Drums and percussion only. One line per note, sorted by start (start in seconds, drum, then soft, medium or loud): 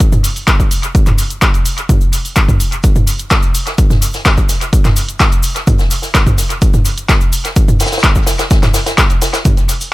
0.00 kick loud
0.00 closed hi-hat medium
0.00 cabasa medium
0.12 mid tom medium
0.12 cabasa soft
0.24 open hi-hat loud
0.24 cabasa medium
0.36 open hi-hat medium
0.36 cabasa soft
0.47 kick loud
0.47 clap loud
0.47 closed hi-hat medium
0.47 cabasa medium
0.60 kick medium
0.60 cabasa soft
0.71 open hi-hat loud
0.71 cabasa medium
0.83 closed hi-hat soft
0.83 cabasa soft
0.95 kick loud
0.95 closed hi-hat medium
0.95 cabasa soft
1.06 clap soft
1.06 closed hi-hat soft
1.06 mid tom medium
1.06 cabasa soft
1.18 open hi-hat loud
1.18 cabasa medium
1.30 closed hi-hat soft
1.30 cabasa soft
1.42 kick loud
1.42 clap loud
1.42 closed hi-hat medium
1.42 cabasa medium
1.54 closed hi-hat soft
1.54 cabasa soft
1.65 open hi-hat loud
1.65 cabasa medium
1.78 closed hi-hat soft
1.78 cabasa soft
1.89 kick loud
1.89 closed hi-hat medium
1.89 mid tom medium
1.89 cabasa medium
2.01 cabasa soft
2.13 open hi-hat loud
2.13 cabasa medium
2.25 open hi-hat medium
2.25 cabasa soft
2.36 kick loud
2.36 clap loud
2.36 closed hi-hat medium
2.36 cabasa medium
2.48 kick medium
2.48 mid tom medium
2.48 cabasa soft
2.60 open hi-hat loud
2.60 cabasa medium
2.72 closed hi-hat soft
2.72 cabasa soft
2.83 kick loud
2.83 closed hi-hat medium
2.83 cabasa medium
2.83 shaker medium
2.95 mid tom medium
2.95 cabasa soft
3.07 open hi-hat loud
3.07 cabasa medium
3.07 shaker medium
3.19 closed hi-hat medium
3.19 cabasa soft
3.31 kick loud
3.31 snare loud
3.31 clap loud
3.31 closed hi-hat medium
3.31 cabasa soft
3.31 shaker medium
3.42 cabasa soft
3.55 open hi-hat loud
3.55 cabasa medium
3.55 shaker medium
3.67 snare soft
3.67 closed hi-hat soft
3.67 cabasa soft
3.78 kick loud
3.78 closed hi-hat medium
3.78 cabasa medium
3.78 shaker medium
3.90 snare soft
3.90 mid tom loud
3.90 cabasa soft
4.02 open hi-hat loud
4.02 cabasa medium
4.02 shaker medium
4.13 snare soft
4.13 open hi-hat medium
4.13 cabasa soft
4.25 kick loud
4.25 snare loud
4.25 clap loud
4.25 closed hi-hat medium
4.25 cabasa soft
4.25 shaker medium
4.37 kick medium
4.37 cabasa soft
4.49 snare soft
4.49 open hi-hat loud
4.49 cabasa medium
4.49 shaker medium
4.61 closed hi-hat soft
4.61 cabasa soft
4.73 kick loud
4.73 closed hi-hat medium
4.73 cabasa medium
4.73 shaker medium
4.84 snare soft
4.84 clap soft
4.84 closed hi-hat soft
4.84 mid tom loud
4.84 cabasa soft
4.96 open hi-hat loud
4.96 cabasa medium
4.96 shaker medium
5.09 closed hi-hat medium
5.09 cabasa soft
5.20 kick loud
5.20 snare loud
5.20 clap loud
5.20 closed hi-hat medium
5.20 cabasa soft
5.20 shaker medium
5.32 closed hi-hat soft
5.32 cabasa soft
5.43 open hi-hat loud
5.43 cabasa medium
5.43 shaker medium
5.55 snare soft
5.55 closed hi-hat medium
5.55 cabasa soft
5.67 kick loud
5.67 closed hi-hat medium
5.67 mid tom loud
5.67 cabasa medium
5.67 shaker medium
5.79 snare medium
5.79 cabasa soft
5.91 open hi-hat loud
5.91 cabasa medium
5.91 shaker medium
6.02 snare soft
6.02 open hi-hat medium
6.02 cabasa soft
6.14 kick loud
6.14 snare loud
6.14 clap loud
6.14 closed hi-hat medium
6.14 cabasa soft
6.14 shaker medium
6.27 kick medium
6.27 mid tom medium
6.27 cabasa soft
6.38 snare soft
6.38 open hi-hat loud
6.38 cabasa medium
6.38 shaker medium
6.50 closed hi-hat medium
6.50 cabasa soft
6.62 kick loud
6.62 closed hi-hat medium
6.62 cabasa soft
6.62 shaker medium
6.74 mid tom medium
6.74 cabasa soft
6.85 open hi-hat loud
6.85 cabasa medium
6.85 shaker medium
6.98 closed hi-hat medium
6.98 cabasa soft
7.09 kick loud
7.09 snare loud
7.09 clap loud
7.09 closed hi-hat medium
7.09 cabasa soft
7.09 shaker medium
7.21 cabasa soft
7.32 open hi-hat loud
7.32 cabasa medium
7.32 shaker medium
7.45 snare soft
7.45 closed hi-hat medium
7.45 cabasa soft
7.56 kick loud
7.56 closed hi-hat medium
7.56 cabasa medium
7.56 shaker medium
7.68 mid tom medium
7.68 cabasa soft
7.80 snare medium
7.80 open hi-hat loud
7.80 cabasa medium
7.80 shaker medium
7.86 snare medium
7.86 shaker medium
7.92 snare medium
7.92 open hi-hat medium
7.92 cabasa soft
7.92 shaker medium
7.98 snare medium
7.98 shaker medium
8.04 kick loud
8.04 snare loud
8.04 clap loud
8.04 closed hi-hat medium
8.04 cabasa soft
8.04 shaker medium
8.15 kick medium
8.15 cabasa soft
8.27 snare loud
8.27 open hi-hat loud
8.27 cabasa medium
8.27 shaker medium
8.38 snare loud
8.38 closed hi-hat medium
8.38 cabasa soft
8.38 shaker medium
8.50 kick loud
8.50 snare loud
8.50 closed hi-hat medium
8.50 cabasa soft
8.50 shaker medium
8.63 snare loud
8.63 clap soft
8.63 closed hi-hat soft
8.63 mid tom medium
8.63 cabasa soft
8.63 shaker medium
8.74 snare loud
8.74 open hi-hat loud
8.74 cabasa medium
8.74 shaker medium
8.86 snare loud
8.86 closed hi-hat medium
8.86 cabasa soft
8.86 shaker medium
8.98 kick loud
8.98 snare loud
8.98 clap loud
8.98 closed hi-hat medium
8.98 cabasa soft
8.98 shaker medium
9.10 closed hi-hat soft
9.10 cabasa soft
9.22 snare loud
9.22 open hi-hat loud
9.22 cabasa medium
9.22 shaker medium
9.33 snare loud
9.33 closed hi-hat medium
9.33 cabasa soft
9.33 shaker medium
9.45 kick loud
9.45 closed hi-hat medium
9.45 mid tom medium
9.45 cabasa soft
9.45 shaker medium
9.57 closed hi-hat soft
9.57 cabasa soft
9.69 open hi-hat loud
9.69 cabasa medium
9.69 shaker medium
9.81 open hi-hat medium
9.81 cabasa soft
9.81 shaker medium